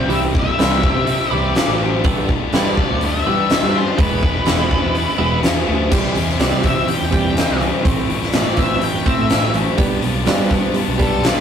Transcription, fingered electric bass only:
0.00 0.49 C2 medium
0.59 0.90 C2 medium
0.95 1.16 C3 medium
1.31 1.52 C2 medium
1.68 2.06 A1 medium
2.04 2.25 G1 medium
2.53 2.84 G1 medium
2.91 3.21 D2 medium
3.27 3.47 G2 medium
3.63 3.83 G2 medium
3.99 4.40 E1 medium
4.47 4.78 E1 medium
4.83 5.04 E2 medium
5.19 5.40 E1 loud
5.43 5.65 E2 medium
5.68 5.89 D2 medium
5.92 6.13 C2 medium
6.16 6.37 E2 medium
6.40 6.50 C2 medium
6.52 6.73 C3 medium
7.01 7.42 E2 medium
7.49 7.70 C2 medium
7.85 7.96 A1 medium
7.98 8.08 G1 medium
8.09 8.93 G1 medium
9.19 9.50 A2 medium
9.54 9.65 A1 medium
9.78 10.00 G1 medium
10.02 10.24 B1 medium
10.27 10.38 G1 medium
10.39 10.60 G2 medium
10.88 11.30 B1 medium
11.36 11.40 G1 medium

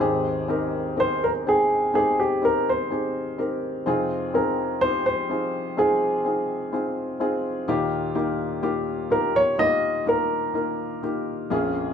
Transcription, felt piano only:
0.00 3.82 G#1 medium
0.00 3.82 D#2 medium
0.00 0.46 C4 medium
0.00 0.46 D#4 medium
0.00 0.47 G4 medium
0.00 0.47 G#4 medium
0.48 0.95 C4 medium
0.48 0.95 D#4 medium
0.48 0.96 G4 medium
0.48 0.96 A#4 medium
0.97 1.43 C4 medium
0.97 1.44 D#4 medium
0.97 1.44 G4 medium
0.97 1.44 A#4 medium
1.46 1.92 C4 medium
1.46 1.92 D#4 medium
1.46 1.93 G#4 medium
1.46 1.93 G5 medium
1.94 2.40 C4 medium
1.94 2.40 D#4 medium
1.94 2.40 G4 medium
1.94 2.41 G#4 medium
2.42 2.88 C4 medium
2.42 2.88 D#4 medium
2.42 2.88 G4 medium
2.42 2.89 A#4 medium
2.90 3.36 C4 medium
2.90 3.36 D#4 medium
2.90 3.37 G4 medium
2.90 3.37 G#4 medium
3.38 3.84 C4 medium
3.38 3.84 D#4 soft
3.38 3.84 G4 medium
3.38 3.85 A#4 medium
3.86 7.64 F2 medium
3.86 7.64 C3 medium
3.86 4.32 C4 medium
3.86 4.32 D#4 medium
3.86 4.32 F4 medium
3.86 4.32 G#4 medium
4.34 4.80 C4 medium
4.34 4.80 D#4 medium
4.34 4.80 F4 medium
4.34 4.80 G#4 medium
4.82 5.27 C4 medium
4.82 5.28 D#4 medium
4.82 5.28 F4 medium
4.82 5.28 G4 medium
5.30 5.75 C4 medium
5.30 5.75 D#4 medium
5.30 5.76 F4 medium
5.30 5.76 G#4 medium
5.77 6.23 C4 medium
5.77 6.23 D#4 medium
5.77 6.23 F4 medium
5.77 6.23 G#4 medium
6.25 6.70 C4 medium
6.25 6.71 D#4 medium
6.25 6.71 F4 medium
6.25 6.71 G#4 medium
6.73 7.18 C4 medium
6.73 7.18 D#4 medium
6.73 7.18 F4 medium
6.73 7.18 G#4 medium
7.20 7.65 C4 medium
7.20 7.66 D#4 medium
7.20 7.66 F4 medium
7.20 7.66 G#4 medium
7.68 11.48 D#2 medium
7.68 11.48 A#2 medium
7.68 8.13 A#3 medium
7.68 8.13 D#4 medium
7.68 8.14 F4 medium
7.68 8.14 G4 loud
8.15 8.61 A#3 medium
8.15 8.61 D#4 medium
8.15 8.61 F4 medium
8.15 8.61 G4 medium
8.62 9.08 A#3 medium
8.62 9.08 D#4 medium
8.62 9.09 F4 medium
8.62 9.09 G4 medium
9.10 9.56 A#3 medium
9.10 9.56 D#4 medium
9.10 9.56 F4 medium
9.10 9.57 G4 medium
9.58 10.04 A#3 medium
9.58 10.04 D#4 medium
9.58 10.04 F4 medium
9.58 10.05 G4 medium
10.06 10.52 A#3 medium
10.06 10.52 D#4 medium
10.06 10.53 F4 medium
10.06 10.53 A#4 medium
10.54 11.00 A#3 medium
10.54 11.00 D#4 medium
10.54 11.01 F4 medium
10.54 11.01 A#4 medium
11.03 11.49 A#3 medium
11.03 11.49 D#4 medium
11.03 11.49 F4 medium
11.03 11.49 G4 medium
11.50 11.94 A#1 medium
11.50 11.94 F2 medium
11.50 11.94 A#3 medium
11.50 11.94 C#4 medium
11.50 11.94 F4 medium
11.50 11.94 G#4 medium

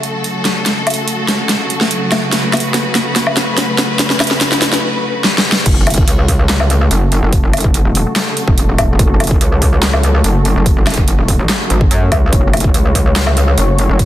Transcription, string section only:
0.00 5.62 C#3 medium
0.00 5.62 F#3 medium
0.00 5.62 A3 medium
0.00 5.62 F#4 medium
0.00 2.29 A4 medium
2.33 5.63 B4 medium
5.66 14.05 C#3 medium
5.66 14.05 F#3 medium
5.66 14.05 A3 medium
5.66 14.05 F#4 medium
5.66 12.31 A4 medium
12.33 14.05 C#5 medium

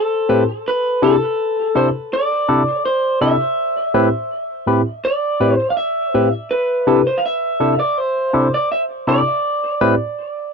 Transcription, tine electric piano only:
0.29 0.42 A2 medium
0.29 0.42 C4 medium
0.29 0.43 E4 medium
0.29 0.42 G4 medium
0.29 0.43 B4 loud
1.02 1.16 C3 loud
1.02 1.16 D4 medium
1.02 1.16 E4 medium
1.02 1.16 G4 medium
1.02 1.16 A4 loud
1.75 1.89 C3 medium
1.75 1.89 D4 medium
1.75 1.89 E4 medium
1.75 1.89 G4 medium
1.75 1.89 A4 loud
2.48 2.62 C3 medium
2.48 2.62 D4 medium
2.48 2.62 E4 medium
2.48 2.62 G4 medium
2.48 2.62 A4 loud
3.21 3.35 C3 medium
3.21 3.35 D4 medium
3.21 3.35 E4 medium
3.21 3.35 G4 medium
3.21 3.35 A4 loud
3.94 4.08 A2 loud
3.94 4.08 C4 loud
3.94 4.08 E4 medium
3.94 4.08 G4 medium
3.94 4.08 B4 loud
4.67 4.81 A2 medium
4.67 4.81 C4 medium
4.67 4.81 E4 medium
4.67 4.81 G4 medium
4.67 4.81 B4 medium
5.40 5.54 A2 medium
5.40 5.54 C4 medium
5.40 5.54 E4 medium
5.40 5.54 G4 medium
5.40 5.54 B4 loud
6.14 6.28 A2 medium
6.14 6.28 C4 medium
6.14 6.28 E4 medium
6.14 6.28 G4 medium
6.14 6.28 B4 loud
6.87 7.01 C3 loud
6.87 7.01 D4 medium
6.87 7.01 E4 medium
6.87 7.01 G4 medium
6.87 7.01 A4 loud
7.60 7.74 C3 medium
7.60 7.74 D4 medium
7.60 7.74 E4 medium
7.60 7.74 G4 medium
7.60 7.74 A4 loud
8.33 8.47 C3 medium
8.33 8.47 D4 medium
8.33 8.47 E4 medium
8.33 8.47 G4 medium
8.33 8.47 A4 medium
9.07 9.20 C3 medium
9.07 9.21 D4 medium
9.07 9.21 E4 medium
9.07 9.21 G4 medium
9.07 9.21 A4 loud
9.81 9.94 A2 loud
9.81 9.94 C4 medium
9.81 9.94 E4 medium
9.81 9.94 G4 medium
9.81 9.94 B4 loud

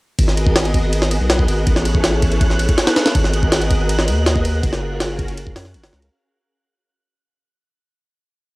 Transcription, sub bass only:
0.19 1.19 G#1 loud
1.21 1.47 B1 medium
1.48 1.65 G#1 loud
1.67 2.67 A1 loud
3.15 4.09 G#1 loud
4.08 4.62 D#2 medium
4.63 5.54 F#1 loud
5.56 5.76 F#2 loud
5.75 5.91 F#1 loud
5.93 6.10 C#2 loud

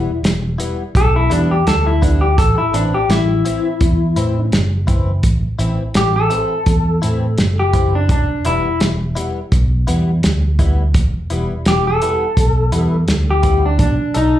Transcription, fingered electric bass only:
0.23 0.56 E1 medium
0.95 1.28 B1 medium
1.30 1.63 E2 medium
1.67 2.40 D2 medium
2.38 2.56 A1 medium
2.74 2.92 A1 medium
3.09 3.42 A1 loud
3.81 4.14 E2 loud
4.16 4.49 A2 medium
4.52 5.24 F#1 medium
5.24 5.41 A1 loud
5.59 5.77 A1 medium
5.96 6.28 A1 loud
6.66 6.99 E2 medium
7.03 7.35 A2 loud
7.39 8.10 F#1 medium
8.10 8.27 E1 medium
8.46 8.63 E1 loud
8.82 9.14 E1 loud
9.52 9.84 B1 loud
9.88 10.20 E2 loud
10.25 10.96 D2 medium
10.94 11.12 E1 medium
11.31 11.48 E1 loud
11.66 11.98 E1 medium
12.37 12.69 B1 medium
12.72 13.05 E2 medium
13.08 13.81 D2 medium
13.79 13.97 B1 medium
14.16 14.33 B1 medium

